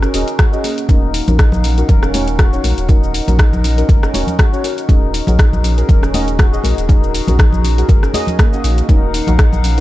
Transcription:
Already playing: C#4 F#4 G#4 A#4
0.02 C#4, cross-stick, cabasa
0.14 D#1 C#4 F#4 G#4 A#4 D#5, open hi-hat, cabasa
0.28 closed hi-hat, cabasa
0.39 F#4, kick, cross-stick, closed hi-hat, cabasa
0.53 C#4 F#4 G#4 D#5, cabasa
0.64 A#3, open hi-hat, cabasa
0.78 closed hi-hat, cabasa
0.89 D#1 C#4 D#4 F#4 A#4 F5 F#5, kick, closed hi-hat, high conga, cabasa
1.14 D#4, open hi-hat, cabasa
1.28 A#1 C#4 D#4 F#4 A#4, closed hi-hat, high conga, low conga, cabasa
1.39 D#4, kick, cross-stick, closed hi-hat, cabasa
1.52 low conga, cabasa
1.64 C#4, open hi-hat, cabasa
1.78 C#4 D#4 F#4 A#4, closed hi-hat, cabasa
1.89 D#1 A#4, kick, closed hi-hat, low conga, cabasa
2.03 C#4, cross-stick, cabasa
2.14 C#4 D#4 F#4 C#5, open hi-hat, high conga, cabasa
2.28 closed hi-hat, cabasa
2.39 F#4, kick, cross-stick, closed hi-hat, cabasa
2.53 C#4 D#4 F#4 C#5, cabasa
2.64 A#1 A#4, open hi-hat, high conga, cabasa
2.78 D#1, closed hi-hat, cabasa
2.89 C#4 D#4 F#4 A#4 D#5, kick, closed hi-hat, high conga, cabasa
3.04 cabasa
3.14 D#4, open hi-hat, cabasa
3.27 A#1 C#4 D#4 F#4 A#4, closed hi-hat, high conga, low conga, cabasa
3.39 D#4, kick, cross-stick, closed hi-hat, cabasa
3.53 low conga, cabasa
3.64 C#4, open hi-hat, cabasa
3.77 C#4 D#4 F#4 A#4, closed hi-hat, cabasa
3.89 F#1 A#4, kick, closed hi-hat, high conga, cabasa
4.03 C#4, cross-stick, cabasa
4.14 D#1 C#4 D#4 F#4 C#5, open hi-hat, high conga, cabasa
4.27 closed hi-hat, low conga, cabasa
4.39 F#4, kick, cross-stick, closed hi-hat, cabasa
4.53 C#4 D#4 F#4 C#5, cabasa
4.64 A#4, open hi-hat, cabasa
4.78 closed hi-hat, cabasa
4.89 D#1 C#4 D#4 F#4 G#4 A#4, kick, closed hi-hat, high conga, cabasa
5.14 D#4, open hi-hat, cabasa
5.27 A#1 C#4 F#4 G#4 A#4, closed hi-hat, high conga, low conga, cabasa
5.39 D#4, kick, cross-stick, closed hi-hat, cabasa
5.53 low conga, cabasa
5.64 C#4, open hi-hat, cabasa
5.78 C#4 F#4 G#4 A#4, closed hi-hat, cabasa
5.89 D#1 A#4, kick, closed hi-hat, low conga, cabasa
6.03 C#4, cross-stick, cabasa
6.14 C#4 D#4 F#4 G#4 D#5, open hi-hat, high conga, cabasa
6.28 closed hi-hat, cabasa
6.39 F#4, kick, cross-stick, closed hi-hat, cabasa
6.53 C#4 F#4 G#4 D#5, cabasa
6.64 A#1 A#4, open hi-hat, high conga, cabasa
6.78 D#1, closed hi-hat, cabasa
6.89 C#4 D#4 F#4 G#4 A#4, kick, closed hi-hat, high conga, cabasa
7.04 cabasa
7.14 D#4, open hi-hat, cabasa
7.27 A#1 C#4 F#4 G#4 A#4, closed hi-hat, high conga, low conga, cabasa
7.39 D#4, kick, cross-stick, closed hi-hat, cabasa
7.53 low conga, cabasa
7.64 C#4, open hi-hat, cabasa
7.78 C#4 F#4 G#4 A#4, closed hi-hat, cabasa
7.89 F#1 A#4, kick, closed hi-hat, high conga, cabasa
8.03 C#4, cross-stick, cabasa
8.14 C#4 F#4 G#4 D#5, open hi-hat, high conga, cabasa
8.27 closed hi-hat, low conga, cabasa
8.39 A#3, kick, cross-stick, closed hi-hat, cabasa
8.53 C#4 F#4 G#4 D#5, cabasa
8.64 A#1 D#4, open hi-hat, cabasa
8.78 closed hi-hat, cabasa
8.89 D#1 C#4 D#4 F#4 A#4 F5 F#5, kick, closed hi-hat, high conga, cabasa
9.14 D#4, open hi-hat, cabasa
9.27 A#1 C#4 D#4 F#4 A#4, closed hi-hat, high conga, low conga, cabasa
9.39 D#4, kick, cross-stick, closed hi-hat, cabasa
9.53 low conga, cabasa
9.64 C#4, open hi-hat, cabasa

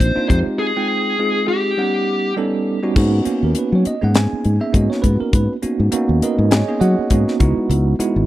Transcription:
Already playing: A#1 A#3 C4 D4 D#4 F4 C5
0.00 kick, closed hi-hat
0.16 A#3 C4 D4 D#4 F4, muted fingered electric bass stroke
0.29 F2 G#3 C4 D#4 F4 G4 C5, kick, closed hi-hat
0.47 muted fingered electric bass stroke
0.59 G#4
0.76 G#3 C4 D#4 F4 G5
1.19 G#3 C4 D#4 F4 G#4
1.48 G4
1.77 G3 B3 C#4 D#4 F#5
2.36 G3 B3 C#4 D#4 A4
2.83 G3 B3 C#4 D#4 F#4
2.96 G#2 A#3 B3 C#4 D#4 F#4, kick, crash
3.25 A#3 B3 C#4 D#4 F#4, muted fingered electric bass stroke, closed hi-hat
3.43 D#2 A#4
3.55 B4, closed hi-hat
3.72 F#3 C#5
3.85 D#5, muted fingered electric bass stroke, closed hi-hat
4.01 G#2 A#3 B3 C#4 D#4 G#4 F#5
4.15 G#5, snare, closed hi-hat
4.33 muted fingered electric bass stroke
4.45 G#2, closed hi-hat
4.60 A#3 B3 C#4 D#4 G#4 E5
4.73 G#2 A#3 B3 C#4 D#4 F#4 D#5, kick, closed hi-hat
4.90 C#5, snare
5.02 G#2 B4, kick, closed hi-hat
5.20 A#4, muted fingered electric bass stroke
5.33 G#2 B4, kick, closed hi-hat
5.62 A#3 B3 C#4 D#4 F#4, muted fingered electric bass stroke, closed hi-hat
5.80 G#2
5.92 A#3 B3 C#4 D#4 F#4, muted fingered electric bass stroke, closed hi-hat
6.09 D#2
6.22 D#4 A#4 B4 D#5, muted fingered electric bass stroke, closed hi-hat
6.38 G#2
6.51 G#4 C#5 D#5 G#5, snare, closed hi-hat
6.68 A#3 B3 C#4 D#4 G#4
6.80 F#3 F#4 C#5 D#5 F#5, closed hi-hat
6.99 muted fingered electric bass stroke
7.10 G#2 A#3 B3 C#4 D#4 F#4, kick, closed hi-hat
7.28 snare
7.40 C#2 G#3 B3 D#4 E4 F#4, kick, closed hi-hat
7.57 muted fingered electric bass stroke
7.70 C#2, closed hi-hat
7.99 G#3 B3 D#4 E4 F#4, muted fingered electric bass stroke, closed hi-hat
8.16 G#1

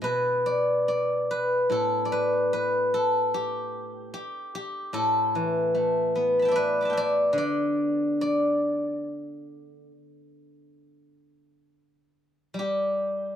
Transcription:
Already playing: G4 A4
0.02 B2 B4
0.46 D5
0.88 D5
1.31 B4
1.70 A2 A4
2.05 D5
2.12 B4
2.53 B4
2.94 A4
3.34 G4
4.14 G4
4.55 G4
4.93 A2 A4
5.35 E3
5.75 A3
6.15 B3
6.39 A5 B5
6.45 E5 G5
6.51 D5
6.56 B4
6.81 B5 D6
6.85 A5
6.90 E5 G5
6.97 D5
7.33 D3
7.38 D5
8.21 D5
12.54 G3
12.59 G4

